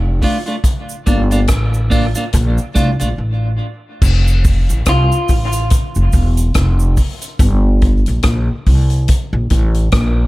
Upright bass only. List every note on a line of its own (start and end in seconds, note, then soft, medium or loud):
0.00 0.20 F1 medium
1.07 1.47 G1 medium
1.49 2.12 A1 medium
2.34 2.57 A#1 loud
2.76 2.99 C2 medium
3.01 3.17 A#1 medium
3.18 3.58 A1 medium
4.02 4.65 F1 loud
4.70 4.86 A1 loud
4.87 5.10 C2 medium
5.30 5.69 A1 medium
5.96 6.12 F1 medium
6.14 6.53 E1 medium
6.55 6.95 F1 medium
7.40 8.03 G1 loud
8.08 8.24 A#1 medium
8.25 8.48 A#1 medium
8.67 9.06 C2 medium
9.33 9.50 A#1 medium
9.51 9.91 A1 medium
9.93 10.27 A#1 loud